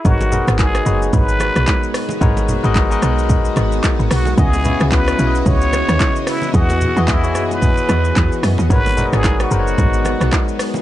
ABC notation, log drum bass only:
X:1
M:4/4
L:1/16
Q:"Swing 16ths" 1/4=111
K:G#m
V:1 name="Log drum bass" clef=bass
G,,,3 G,,,3 F,,,2 G,,,3 B,,, z4 | G,,,3 G,,,3 B,,,4 G,,,2 z G,,, B,,,2 | C,,3 C,,3 B,,,2 C,,3 D,, z4 | E,,3 E,,3 F,,4 E,,2 E,, z F,, E,, |
G,,,3 G,,,3 F,,,2 G,,,3 B,,, z4 |]